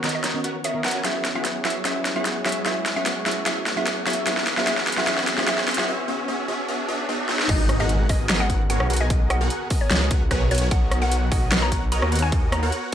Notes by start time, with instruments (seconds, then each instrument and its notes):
Already playing: analog synth pad D#3 B3 C#4 A#4, riser
0.03 synth pluck D#3 B3 C#4 A#4, supersaw synth B3 F#4 A#4 C#5 D#5, snare, closed hi-hat
0.09 closed hi-hat
0.15 synth pluck D#5
0.24 supersaw synth B3 F#4 A#4 C#5 D#5, snare, closed hi-hat
0.34 synth pluck D#3 B3 C#4 A#4
0.44 supersaw synth B3 F#4 A#4 C#5 F#5, closed hi-hat
0.64 supersaw synth B3 F#4 A#4 C#5 D#5, synth pluck E5, closed hi-hat
0.74 synth pluck D#3 B3 C#4 A#4
0.84 supersaw synth B3 F#4 A#4 C#5 F#5, synth pluck F#5, snare, closed hi-hat
0.88 closed hi-hat
0.91 supersaw synth B3 F#4 A#4 C#5 G#5, closed hi-hat
1.04 synth pluck F#3 C#4 E4 G#4 E5, analog synth pad F#3 E4 G#4, supersaw synth B3 F#4 G#4 C#5 E5, snare, closed hi-hat
1.25 snare, closed hi-hat
1.34 synth pluck F#3 C#4 E4 G#4 E5, supersaw synth B3 F#4 G#4 C#5 F#5
1.45 snare, closed hi-hat
1.64 synth pluck F#3 C#4 E4 G#4 E5, supersaw synth B3 F#4 G#4 C#5 E5, snare, closed hi-hat
1.70 closed hi-hat
1.84 synth pluck F#3 C#4 E4 G#4 E5, supersaw synth B3 F#4 G#4 C#5 E5, snare, closed hi-hat
2.05 snare, closed hi-hat
2.15 synth pluck F#3 C#4 E4 G#4 E5, supersaw synth B3 F#4 G#4 C#5 F#5
2.25 snare, closed hi-hat
2.45 synth pluck F#3 C#4 E4 G#4 E5, supersaw synth B3 F#4 G#4 C#5 E5, snare, closed hi-hat
2.49 closed hi-hat
2.52 closed hi-hat
2.65 synth pluck F#3 C#4 E4 G#4 E5, supersaw synth B3 F#4 G#4 C#5 E5, snare, closed hi-hat
2.86 snare, closed hi-hat
2.96 synth pluck F#3 C#4 E4 G#4 E5, supersaw synth B3 F#4 G#4 C#5 F#5
3.06 snare, closed hi-hat
3.25 synth pluck F#3 C#4 E4 G#4 E5, supersaw synth B3 F#4 G#4 C#5 E5, snare, closed hi-hat
3.31 closed hi-hat
3.45 synth pluck F#3 C#4 E4 G#4 E5, supersaw synth B3 F#4 G#4 C#5 E5, snare, closed hi-hat
3.66 snare, closed hi-hat
3.76 synth pluck F#3 C#4 E4 G#4 E5, supersaw synth B3 F#4 G#4 C#5 F#5
3.87 snare, closed hi-hat
4.06 analog synth pad E3 D#4 B4, synth pluck F#3 C#4 E4 G#4 E5, supersaw synth B3 F#4 G#4 C#5 E5, snare, closed hi-hat
4.10 closed hi-hat
4.13 closed hi-hat
4.26 synth pluck F#3 C#4 E4 G#4 E5, supersaw synth B3 F#4 G#4 C#5 E5, snare, closed hi-hat
4.37 snare
4.47 snare, closed hi-hat
4.57 synth pluck F#3 C#4 E4 G#4 E5, supersaw synth B3 F#4 G#4 C#5 F#5, snare
4.66 synth pluck F#3 C#4 E4 G#4 E5, supersaw synth B3 F#4 G#4 C#5 E5, snare, closed hi-hat
4.77 snare
4.87 snare, closed hi-hat
4.92 closed hi-hat
4.97 synth pluck F#3 C#4 E4 G#4 E5, supersaw synth B3 F#4 G#4 C#5 F#5, snare
5.07 synth pluck F#3 C#4 E4 G#4 E5, supersaw synth B3 F#4 G#4 C#5 E5, snare, closed hi-hat
5.18 snare
5.27 snare, closed hi-hat
5.37 synth pluck F#3 C#4 E4 G#4 E5, supersaw synth B3 F#4 G#4 C#5 F#5, snare
5.47 synth pluck F#3 C#4 E4 G#4 E5, supersaw synth B3 F#4 G#4 C#5 E5, snare, closed hi-hat
5.58 snare
5.68 snare, closed hi-hat
5.71 closed hi-hat
5.74 synth pluck F#3 C#4 E5, supersaw synth B3 F#4 G#4 C#5 F#5, snare, closed hi-hat
5.79 synth pluck E4 G#4
5.88 supersaw synth B3 F#4 G#4 C#5 E5
6.08 supersaw synth B3 F#4 G#4 C#5 E5
6.28 supersaw synth B3 F#4 G#4 C#5 E5
6.48 supersaw synth B3 F#4 G#4 C#5 E5
6.68 supersaw synth B3 F#4 G#4 C#5 E5
6.88 supersaw synth B3 F#4 G#4 C#5 E5
7.09 supersaw synth B3 F#4 G#4 C#5 E5
7.29 supersaw synth B3 F#4 G#4 C#5 E5, snare
7.39 snare
7.49 detuned saw bass G#1, supersaw synth B3 F#4 G#4 A#4 D#5, synth pluck D#5, kick, closed hi-hat, crash, impact
7.69 cross-stick, closed hi-hat
7.80 supersaw synth B3 F#4 G#4 A#4 F#5, synth pluck D#5
7.89 closed hi-hat
8.09 supersaw synth B3 F#4 G#4 A#4 D#5, synth pluck D#5, kick, open hi-hat
8.29 supersaw synth B3 F#4 G#4 A#4 D#5, cross-stick, snare, closed hi-hat
8.40 synth pluck F#5
8.50 supersaw synth B3 F#4 G#4 A#4 F#5, kick, closed hi-hat
8.70 supersaw synth B3 F#4 G#4 A#4 C#5, synth pluck F#5, closed hi-hat
8.80 detuned saw bass B1, cross-stick
8.90 supersaw synth B3 F#4 G#4 A#4 F#5, closed hi-hat
8.93 closed hi-hat
8.96 supersaw synth B3 F#4 G#4 A#4 G#5, closed hi-hat
9.01 synth pluck D#5
9.10 supersaw synth B3 F#4 G#4 A#4 D#5, kick, closed hi-hat
9.30 synth pluck F#5, cross-stick, closed hi-hat
9.41 supersaw synth B3 F#4 G#4 A#4 F#5
9.50 closed hi-hat
9.70 supersaw synth B3 F#4 G#4 A#4 D#5, kick, open hi-hat
9.81 synth pluck C#5
9.91 detuned saw bass C#2, supersaw synth B3 F#4 G#4 A#4 D#5, snare, closed hi-hat
10.11 supersaw synth B3 F#4 G#4 A#4 F#5, kick, closed hi-hat
10.31 detuned saw bass B1, supersaw synth B3 F#4 G#4 A#4 C#5, synth pluck B4, kick, cross-stick, closed hi-hat
10.51 supersaw synth B3 F#4 A#4 C#5 F#5, synth pluck C#5, closed hi-hat
10.55 closed hi-hat
10.58 supersaw synth B3 F#4 A#4 C#5 G#5, closed hi-hat
10.71 detuned saw bass B1, supersaw synth B3 F#4 A#4 C#5 D#5, synth pluck F#5, kick, closed hi-hat
10.91 cross-stick, closed hi-hat
11.02 supersaw synth B3 F#4 A#4 C#5 F#5, synth pluck F#5
11.12 closed hi-hat
11.31 supersaw synth B3 F#4 A#4 C#5 D#5, synth pluck F#5, kick, open hi-hat
11.52 supersaw synth B3 F#4 A#4 C#5 D#5, cross-stick, snare, closed hi-hat
11.62 synth pluck A#5
11.72 supersaw synth B3 F#4 A#4 C#5 F#5, kick, closed hi-hat
11.92 supersaw synth B3 F#4 A#4 C#5 D#5, synth pluck A#5, closed hi-hat
12.02 detuned saw bass D#2, cross-stick
12.12 supersaw synth B3 F#4 A#4 C#5 F#5, closed hi-hat
12.15 closed hi-hat
12.19 supersaw synth B3 F#4 A#4 C#5 G#5, synth pluck G#5, closed hi-hat
12.32 supersaw synth B3 F#4 A#4 D#5, kick, closed hi-hat
12.52 synth pluck A#5, cross-stick, closed hi-hat
12.63 supersaw synth B3 F#4 A#4 C#5 F#5
12.72 closed hi-hat